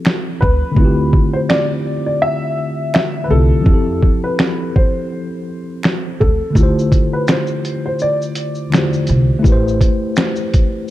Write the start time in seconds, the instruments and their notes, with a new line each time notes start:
Already playing: tine electric piano F3 C4 E4 G4 A4
0.05 finger snap, snare
0.41 upright bass D2, upright piano B4, kick
0.72 tine electric piano D3 A3
0.76 upright bass D2, tine electric piano C4 E4, kick
0.82 tine electric piano F4 G4
1.13 kick
1.33 upright piano C5
1.49 upright piano D5, finger snap, snare
2.06 upright piano D5
2.22 upright piano E5
2.94 upright piano E5, finger snap, snare
3.24 upright piano B4
3.28 upright bass C2, tine electric piano D3 A3 C4 E4, upright piano A4
3.33 tine electric piano F4 G4
3.61 tine electric piano F3 C4
3.66 upright bass F2, tine electric piano E4, kick
3.71 tine electric piano G4 A4
4.03 kick
4.24 upright piano B4
4.39 finger snap, snare
4.76 upright piano C5, kick
5.83 finger snap, snare
6.20 upright bass D2, upright piano A4, kick
6.50 tine electric piano D3 A3
6.55 upright bass D2, tine electric piano E4 F4, kick, shaker
6.61 tine electric piano G4 C5
6.79 shaker
6.92 kick, closed hi-hat, shaker
7.13 upright piano B4
7.27 upright piano C5, finger snap, snare, shaker
7.47 shaker
7.65 closed hi-hat, shaker
7.86 upright piano C5
7.99 upright piano D5, shaker
8.22 shaker
8.35 closed hi-hat, shaker
8.55 shaker
8.70 tine electric piano D3 A3 E4 F4, finger snap, snare
8.75 tine electric piano G4 C5, shaker
8.93 shaker
9.07 upright bass C2, closed hi-hat, shaker
9.39 tine electric piano A3 E4
9.44 upright bass A1, tine electric piano G4, kick, shaker
9.49 tine electric piano B4 C5
9.68 shaker
9.81 kick, closed hi-hat, shaker
10.16 finger snap, snare, shaker
10.36 shaker
10.54 kick, closed hi-hat, shaker